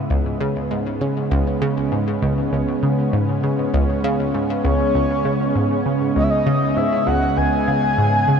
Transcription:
Already playing: C#3 G#3 B3
0.10 C#2 C#4
0.40 C#3
0.71 G#2
1.01 C#3
1.31 C#2
1.62 C#3
1.92 G#2
2.22 C#2
2.53 C#2
2.83 C#3
3.13 G#2
3.43 C#3
3.74 C#2
4.04 C#3
4.34 G#2
4.64 C#2 C#5
4.95 C#2
5.25 C#3
5.55 G#2
5.86 C#3
6.16 C#2 D#5
6.23 E5
6.30 D#5
6.46 C#3
6.77 G#2 E5
7.07 C#2 F#5
7.37 C#2 G#5
7.68 C#3
7.98 G#2
8.28 C#3

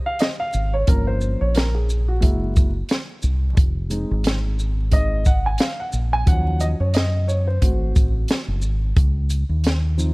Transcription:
Already playing: C3 C#3 G#3
0.06 F5
0.19 D#5, snare, closed hi-hat
0.40 F5
0.53 G#1, shaker
0.73 C#5
0.87 G1 F3 A#3 C#4 A#4, kick, closed hi-hat
1.07 C5
1.21 shaker
1.41 A#1 C#5
1.55 A#4, snare, closed hi-hat
1.75 G#4
1.90 shaker
2.08 F#4
2.20 F#1 G#3 A#3 E4, kick, closed hi-hat
2.56 kick, closed hi-hat, shaker
2.89 snare, closed hi-hat
3.22 C2, shaker
3.57 F1, kick, closed hi-hat
3.90 G#3 C4 D#4, closed hi-hat, shaker
4.11 G#1
4.24 snare, closed hi-hat
4.59 shaker
4.91 G#3 C4 D#4 D#5, kick, closed hi-hat
5.25 F#5, kick, shaker
5.46 G#5
5.58 F5, snare, closed hi-hat
5.80 F#5
5.93 A#1, shaker
6.13 G#5
6.26 D#2 F3 F#3 C#4 F#5, kick, closed hi-hat
6.60 D#5, closed hi-hat, shaker
6.80 F#2 C#5
6.94 D#5, snare, closed hi-hat
7.28 C#5, shaker
7.47 C5
7.61 G#1 A3 C4 F#4, kick, closed hi-hat
7.96 A1, kick, closed hi-hat, shaker
8.28 snare, closed hi-hat
8.48 F#1
8.62 G#1, shaker
8.96 C#2, kick, closed hi-hat
9.30 closed hi-hat, shaker
9.49 D#2
9.64 snare, closed hi-hat
9.97 F3 C4 D#4, shaker

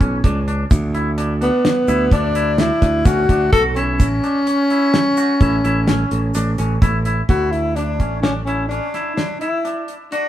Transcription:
Already playing: C#4
0.01 B1 C#4, kick, closed hi-hat
0.24 C#2 D4, kick, closed hi-hat
0.48 D4, closed hi-hat
0.71 D2, kick, closed hi-hat, shaker
0.95 E4, closed hi-hat
1.18 D4, closed hi-hat
1.41 B3 D4, closed hi-hat
1.65 snare, closed hi-hat
1.88 D2 E4, closed hi-hat, shaker
2.11 D2 D4, kick, closed hi-hat, shaker
2.35 E4, closed hi-hat
2.58 D4 E4, snare, closed hi-hat, shaker
2.82 D2, kick, snare, closed hi-hat, shaker
3.05 D2 C#4 F#4, kick, closed hi-hat, shaker
3.29 D2 D4, kick, closed hi-hat
3.52 B1 F#4 A4, kick, closed hi-hat
3.76 C#4 E4, closed hi-hat
4.00 A1, kick, closed hi-hat, shaker
4.23 D4, closed hi-hat, shaker
4.47 C#4, closed hi-hat, shaker
4.70 E4, closed hi-hat
4.94 snare, closed hi-hat
5.17 F#4, closed hi-hat, shaker
5.41 A1 E4, kick, closed hi-hat, shaker
5.64 A1 E4, closed hi-hat
5.88 C#4, snare, closed hi-hat, shaker
6.11 A1, closed hi-hat
6.34 A1 D4, closed hi-hat, shaker
6.58 A1 C#4, closed hi-hat, shaker
6.82 A1 E4, kick, snare, closed hi-hat, shaker
7.05 E4, closed hi-hat
7.29 D2 E4 F#4, kick, closed hi-hat
7.52 E4, closed hi-hat
7.75 D4, closed hi-hat
8.00 A1 C#4, kick, closed hi-hat
8.22 C#4 D4, snare, closed hi-hat
8.46 C#4 E4, closed hi-hat
8.68 C#4 D4, closed hi-hat
8.94 E4, snare, closed hi-hat
9.16 D4, snare, closed hi-hat
9.40 E4, closed hi-hat
9.65 D4, closed hi-hat
9.88 closed hi-hat
10.12 D4 F#4, closed hi-hat

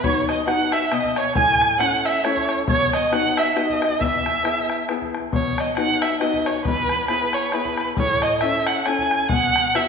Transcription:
0.03 B3 D#4 F#4 C#5, bodhran
0.29 D#5, bodhran
0.46 B3 D#4 F#4 F#5, bodhran
0.72 E5, bodhran
0.91 B2 D#5, bodhran
1.04 bodhran
1.16 C#5, bodhran
1.35 A2 G#5, bodhran
1.61 bodhran
1.79 A3 C#4 E4 F#5, bodhran
2.05 E5, bodhran
2.24 A3 C#4 E4 C#5, bodhran
2.37 bodhran
2.49 bodhran
2.68 B2 C#5, bodhran
2.74 C#5
2.80 C#5
2.93 D#5, bodhran
3.12 B3 D#4 F#4 F#5, bodhran
3.37 E5, bodhran
3.51 E5
3.56 B3 D#4 F#4 D#5, bodhran
3.70 bodhran
3.82 bodhran
3.99 E2 E5, bodhran
4.26 bodhran
4.43 B3 E4 G#4, bodhran
4.70 bodhran
4.88 B3 E4 G#4, bodhran
5.02 bodhran
5.14 bodhran
5.32 B2 C#5, bodhran
5.58 D#5, bodhran
5.77 B3 D#4 F#4 F#5, bodhran
6.01 E5, bodhran
6.20 B3 D#4 F#4 D#5, bodhran
6.34 bodhran
6.46 C#5, bodhran
6.65 E2 B4, bodhran
6.89 bodhran
7.08 B3 E4 G#4 B4, bodhran
7.33 C#5, bodhran
7.52 B3 E4 G#4 B4, bodhran
7.65 bodhran
7.77 bodhran
7.97 A2 C#5, bodhran
8.22 D#5, bodhran
8.41 C#4 E4 A4 E5, bodhran
8.67 F#5, bodhran
8.86 C#4 E4 A4 G#5, bodhran
8.99 bodhran
9.11 bodhran
9.29 B2 F#5, bodhran
9.56 bodhran
9.74 B3 E4 F#4 E5, bodhran

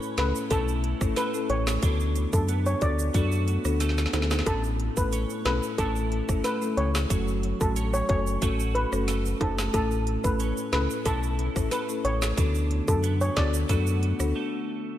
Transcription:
Already playing: A2 A3 C#4
0.02 shaker
0.18 C#2 A3 C#4 E4 A4 B4, snare, closed hi-hat
0.35 shaker
0.51 B1 A3 C#4 E4 A4, kick, closed hi-hat, shaker
0.68 shaker
0.84 closed hi-hat
1.01 A1 A3 C#4 E4 A4, kick, cross-stick, shaker
1.16 A3 B4, snare, closed hi-hat, shaker
1.34 A3 C#4 E4 A4, shaker
1.50 A1 C#5, closed hi-hat
1.67 snare, shaker
1.82 D2 D3 B3 D4 F#4 A4, kick, closed hi-hat, shaker
2.00 shaker
2.16 closed hi-hat, shaker
2.33 F#2 B3 D4 F#4 A4, kick, shaker
2.48 B3, closed hi-hat, shaker
2.66 C#5, shaker
2.81 D2 B3 D4 F#4 A4 D5, kick, closed hi-hat, shaker
2.99 shaker
3.14 F#2 A3 B3 D4 F#4 A4, kick, closed hi-hat, shaker
3.32 shaker
3.48 closed hi-hat, shaker
3.65 D2 B3 D4 F#4 A4, cross-stick, shaker
3.80 A3, snare, closed hi-hat, shaker
3.89 snare
3.98 snare, shaker
4.06 snare
4.13 D2 B3 D4 F#4 A4, snare, closed hi-hat, high timbale, shaker
4.22 snare
4.31 snare, high timbale, shaker
4.39 snare
4.46 A1 A2 A3 C#4 E4 A4, kick, closed hi-hat, shaker
4.64 shaker
4.80 closed hi-hat
4.97 A1 A3 C#4 E4 A4 B4, kick, shaker
5.12 C#4, closed hi-hat, shaker
5.30 shaker
5.45 B1 A3 C#4 E4 A4 B4, snare, closed hi-hat
5.63 shaker
5.78 A1 A3 C#4 E4 A4, kick, closed hi-hat, shaker
5.96 shaker
6.12 closed hi-hat
6.29 G#1 A3 C#4 E4 A4, kick, cross-stick, shaker
6.44 A3 B4, snare, closed hi-hat, shaker
6.62 A3 C#4 E4 A4, shaker
6.77 C#2 C#5, closed hi-hat
6.95 snare, shaker
7.10 F#1 F#3 A3 C#4 F#4 A4, kick, closed hi-hat, shaker
7.28 shaker
7.43 closed hi-hat
7.60 A1 A3 C#4 F#4 A4, kick, shaker
7.76 C#4, closed hi-hat, shaker
7.94 C#5, shaker
8.09 F#1 A3 C#4 F#4 A4 C#5, kick, closed hi-hat
8.27 shaker
8.42 A1 A3 C#4 F#4 A4, kick, closed hi-hat, shaker
8.60 shaker
8.75 B4, closed hi-hat
8.92 F#1 A3 C#4 F#4 A4, cross-stick, shaker
9.08 A3, snare, closed hi-hat, shaker
9.25 shaker
9.40 F#1 A3 C#4 F#4 A4, kick, closed hi-hat, high timbale
9.58 snare, shaker
9.73 A1 A2 A3 C#4 E4 A4, kick, closed hi-hat, shaker
9.91 shaker
10.07 closed hi-hat
10.24 A1 A3 C#4 E4 A4 B4, kick, shaker
10.40 C#4, closed hi-hat, shaker
10.57 shaker
10.73 C#2 A3 C#4 E4 A4 B4, snare, closed hi-hat
10.90 shaker
11.05 B1 A3 C#4 E4 A4, kick, closed hi-hat, shaker
11.23 shaker
11.39 closed hi-hat
11.56 A1 A3 C#4 E4 A4, kick, cross-stick, shaker
11.71 A3 B4, snare, closed hi-hat, shaker
11.89 A3 C#4 E4 A4, shaker
12.05 A1 C#5, closed hi-hat
12.22 snare, shaker
12.37 D2 D3 B3 D4 F#4 A4, kick, closed hi-hat, shaker
12.55 shaker
12.71 closed hi-hat
12.88 F#2 B3 D4 F#4 A4, kick, shaker
13.03 B3, closed hi-hat, shaker
13.21 C#5, shaker
13.36 D2 B3 D4 F#4 A4 D5, kick, snare, closed hi-hat
13.54 shaker
13.69 F#2 A3 B3 D4 F#4 A4, kick, closed hi-hat, shaker
13.87 shaker
14.03 closed hi-hat
14.19 D2 B3 D4 F#4 A4, cross-stick, shaker
14.36 A3

